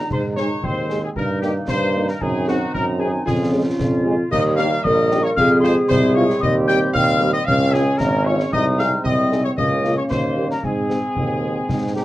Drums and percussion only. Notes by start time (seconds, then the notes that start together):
0.11 concert bass drum, crash
0.37 snare
0.63 concert bass drum
0.90 snare
1.16 concert bass drum
1.42 snare
1.68 concert bass drum, snare
2.08 snare
2.21 concert bass drum
2.48 snare
2.75 concert bass drum
3.27 concert bass drum, snare
3.79 concert bass drum, snare
4.33 concert bass drum, crash
4.58 snare
4.85 concert bass drum
5.11 snare
5.37 concert bass drum
5.64 snare
5.90 concert bass drum, snare
6.30 snare
6.42 concert bass drum
6.69 snare
6.95 concert bass drum
7.48 concert bass drum
7.74 snare
8.00 concert bass drum, snare
8.40 snare
8.53 concert bass drum, crash
8.79 snare
9.05 concert bass drum
9.32 snare
9.58 concert bass drum
9.85 snare
10.11 concert bass drum, snare
10.51 snare
10.64 concert bass drum
10.90 snare
11.17 concert bass drum
11.69 concert bass drum, snare